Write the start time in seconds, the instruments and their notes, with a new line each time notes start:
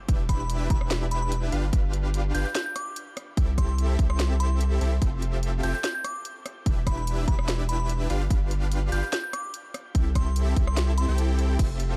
0.08 sub bass E1, supersaw synth D4 E4 G4 B4 E5, kick, closed hi-hat
0.29 synth bell B5, kick, cross-stick, closed hi-hat
0.40 synth bell B5
0.50 closed hi-hat
0.70 sub bass E1, supersaw synth D4 E4 G4 B4 E5, synth bell B5, kick, closed hi-hat
0.81 cross-stick
0.91 snare, closed hi-hat
1.11 synth bell B5, closed hi-hat
1.22 synth bell B5
1.32 closed hi-hat
1.52 sub bass G1, supersaw synth D4 F4 G4 B4 F5, closed hi-hat
1.73 sub bass G1, supersaw synth D4 F4 G4 B4 F5, kick, closed hi-hat
1.93 closed hi-hat
2.14 closed hi-hat
2.34 sub bass G1, supersaw synth D4 F4 G4 B4 F5, synth bell G6, closed hi-hat
2.45 synth bell G6
2.55 synth bell G6, snare, closed hi-hat
2.66 synth bell G6
2.76 synth bell D6, cross-stick, closed hi-hat
2.96 closed hi-hat
3.17 cross-stick, closed hi-hat
3.37 sub bass C2, supersaw synth C4 E4 G4 A4 E5, kick, closed hi-hat
3.58 synth bell C6, kick, cross-stick, closed hi-hat
3.69 synth bell C6
3.78 closed hi-hat
3.99 sub bass C2, supersaw synth C4 E4 G4 A4 E5, kick, closed hi-hat
4.10 synth bell C6, cross-stick
4.20 snare, closed hi-hat
4.40 synth bell C6, closed hi-hat
4.61 closed hi-hat
4.81 sub bass C2, supersaw synth C4 E4 G4 A4 E5, closed hi-hat
5.02 sub bass F1, supersaw synth C4 F4 G4 A4 E5, kick, closed hi-hat
5.22 closed hi-hat
5.43 closed hi-hat
5.63 sub bass F1, supersaw synth C4 F4 G4 A4 E5, synth bell G6, closed hi-hat
5.74 synth bell G6
5.84 synth bell G6, snare, closed hi-hat
5.95 synth bell G6
6.04 synth bell D6, cross-stick, closed hi-hat
6.25 closed hi-hat
6.46 cross-stick, closed hi-hat
6.66 sub bass E1, supersaw synth D4 E4 G4 B4 E5, kick, closed hi-hat
6.87 synth bell B5, kick, cross-stick, closed hi-hat
6.97 synth bell B5
7.07 closed hi-hat
7.28 sub bass E1, supersaw synth D4 E4 G4 B4 E5, synth bell B5, kick, closed hi-hat
7.39 cross-stick
7.48 snare, closed hi-hat
7.69 synth bell B5, closed hi-hat
7.80 synth bell B5
7.89 closed hi-hat
8.10 sub bass G1, supersaw synth D4 F4 G4 B4 F5, closed hi-hat
8.30 sub bass G1, supersaw synth D4 F4 G4 B4 F5, kick, closed hi-hat
8.51 closed hi-hat
8.72 closed hi-hat
8.92 sub bass G1, supersaw synth D4 F4 G4 B4 F5, synth bell G6, closed hi-hat
9.03 synth bell G6
9.13 synth bell G6, snare, closed hi-hat
9.24 synth bell G6
9.33 synth bell D6, cross-stick, closed hi-hat
9.54 closed hi-hat
9.74 cross-stick, closed hi-hat
9.95 sub bass C2, supersaw synth C4 E4 G4 A4 E5, kick, closed hi-hat
10.15 synth bell C6, kick, cross-stick, closed hi-hat
10.26 synth bell C6
10.36 closed hi-hat
10.56 sub bass C2, supersaw synth C4 E4 G4 A4 E5, kick, closed hi-hat
10.67 synth bell C6, cross-stick
10.77 snare, closed hi-hat
10.98 synth bell C6, closed hi-hat
11.08 sub bass C2, supersaw synth C4 E4 G4 A4 G5
11.18 closed hi-hat
11.39 closed hi-hat
11.59 sub bass F1, supersaw synth C4 F4 G4 A4 E5, kick, closed hi-hat, crash
11.80 closed hi-hat